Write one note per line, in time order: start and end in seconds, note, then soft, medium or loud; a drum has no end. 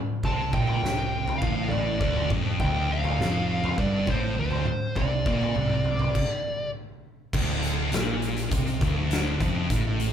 0.23 0.51 C2 loud
0.23 0.53 C3 medium
0.23 0.53 A5 loud
0.23 kick loud
0.23 floor tom medium
0.53 0.81 A#1 medium
0.53 0.82 A#2 loud
0.53 1.38 G5 loud
0.53 kick loud
0.67 floor tom medium
0.83 1.38 C2 loud
0.83 1.41 C3 loud
0.83 snare medium
0.83 mid tom medium
1.28 floor tom medium
1.38 2.00 A2 loud
1.38 1.69 F5 medium
1.38 kick loud
1.42 1.97 A1 loud
1.70 1.99 D5 medium
1.70 floor tom medium
2.00 2.28 D1 loud
2.00 2.30 D2 loud
2.00 2.28 D5 medium
2.00 kick loud
2.16 floor tom medium
2.30 2.58 F1 loud
2.30 2.59 F2 loud
2.30 kick loud
2.30 mid tom medium
2.60 3.15 D1 medium
2.60 3.19 D2 loud
2.60 2.91 G5 loud
2.60 kick loud
2.60 floor tom medium
2.92 3.79 F5 loud
3.04 floor tom loud
3.19 3.75 F1 loud
3.19 3.77 F2 loud
3.19 snare medium
3.19 mid tom medium
3.64 floor tom loud
3.78 4.06 G1 loud
3.78 4.07 G2 loud
3.78 4.09 D5 loud
3.78 kick loud
4.06 4.35 A1 medium
4.06 4.36 A2 loud
4.06 4.39 C5 medium
4.06 kick loud
4.06 floor tom medium
4.37 4.66 D1 medium
4.37 4.66 D2 loud
4.37 5.00 C5 medium
4.51 floor tom medium
4.65 mid tom medium
4.96 5.24 C2 medium
4.96 5.26 C3 loud
4.96 6.70 D5 medium
4.96 kick loud
4.96 floor tom medium
5.26 5.54 A#1 loud
5.26 5.55 A#2 loud
5.26 kick loud
5.42 floor tom medium
5.55 6.11 C2 medium
5.55 6.15 C3 loud
5.55 mid tom medium
5.69 mid tom medium
5.85 mid tom medium
5.99 floor tom medium
6.15 kick loud
6.15 crash loud
7.33 7.89 D1 loud
7.33 7.92 D2 loud
7.33 kick loud
7.33 crash loud
7.63 closed hi-hat medium
7.92 8.48 A#1 loud
7.92 8.51 A#2 loud
7.92 snare loud
7.92 closed hi-hat loud
8.22 closed hi-hat medium
8.37 closed hi-hat medium
8.51 8.79 C2 loud
8.51 8.80 C3 loud
8.51 kick loud
8.51 closed hi-hat medium
8.67 closed hi-hat soft
8.81 9.36 D1 medium
8.81 9.40 D2 loud
8.81 kick loud
8.81 closed hi-hat medium
9.11 snare loud
9.11 closed hi-hat medium
9.40 9.68 F1 medium
9.40 9.70 F2 loud
9.40 kick loud
9.40 closed hi-hat medium
9.70 10.13 A1 loud
9.70 10.13 A2 loud
9.70 kick loud
9.70 closed hi-hat loud
10.00 closed hi-hat medium